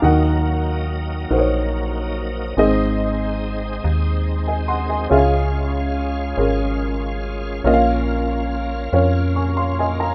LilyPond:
<<
  \new Staff \with { instrumentName = "Upright piano" } { \time 6/8 \key des \major \tempo 4. = 47 << { <f'' bes''>16 r2 r8. | r2 r16 <ees'' aes''>16 <ges'' c'''>16 <ees'' aes''>16~ | <ees'' aes''>16 r2 r8. | r2 <aes'' des'''>16 <f'' c'''>16 <ees'' aes''>16 <f'' bes''>16 | } \\ { <ees ees' ges' bes' ges''>4. <ees' ges' bes' c'' des''>4. | <aes, c' ees' aes' ees''>4. r4. | <des des' f' aes' fes'' f''>4. <des' f' aes' bes'>4. | <bes, des' f' bes' ees'' f''>4. <des' f' bes' des''>4. | } >> }
  \new Staff \with { instrumentName = "Tonewheel organ" } { \time 6/8 \key des \major << { ees'2.~ | ees'2. | f'2.~ | f'2. | } \\ { bes2. | c'2. | des'2.~ | des'2. | } >> }
  \new Staff \with { instrumentName = "Tonewheel organ" } { \clef bass \time 6/8 \key des \major ges2. | aes2.~ | aes2. | bes2. | }
  \new Staff \with { instrumentName = "FM bass" } { \clef bass \time 6/8 \key des \major ees,4. bes,,4. | aes,,4. ees,4. | des,4. aes,,4. | bes,,4. f,4. | }
>>